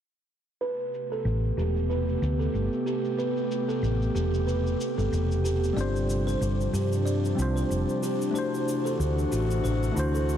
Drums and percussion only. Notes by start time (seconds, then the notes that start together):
0.62 cabasa
0.80 cabasa
0.94 cabasa
1.12 cabasa
1.27 cabasa
1.45 cabasa
1.59 cabasa
1.77 cabasa
1.91 cabasa
2.09 cabasa
2.23 cabasa
2.41 cabasa
2.55 cabasa
2.73 cabasa
2.87 cabasa
3.05 cabasa
3.19 cabasa
3.37 cabasa
3.51 cabasa
3.70 cabasa
3.84 cabasa
4.02 cabasa
4.16 cabasa
4.34 cabasa
4.49 cabasa
4.67 cabasa
4.81 cabasa
4.99 cabasa
5.13 cabasa
5.32 cabasa
5.46 cabasa
5.64 cabasa
5.78 cabasa
5.96 cabasa
6.10 cabasa
6.28 cabasa
6.42 cabasa
6.61 cabasa
6.75 cabasa
6.93 cabasa
7.07 cabasa
7.25 cabasa
7.39 cabasa
7.57 cabasa
7.72 cabasa
7.89 cabasa
8.03 cabasa
8.22 cabasa
8.36 cabasa
8.54 cabasa
8.69 cabasa
8.86 cabasa
9.01 cabasa
9.19 cabasa
9.33 cabasa
9.51 cabasa
9.65 cabasa
9.83 cabasa
9.97 cabasa
10.15 cabasa
10.29 cabasa